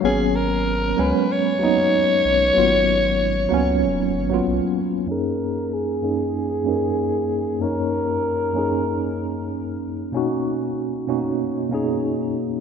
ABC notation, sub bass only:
X:1
M:4/4
L:1/8
Q:"Swing 16ths" 1/4=95
K:F#
V:1 name="Sub bass" clef=bass
G,,,3 C,, z3 B,,, | G,,,3 C,, D,,, G,,, B,,, z | z8 | z8 |
z8 |]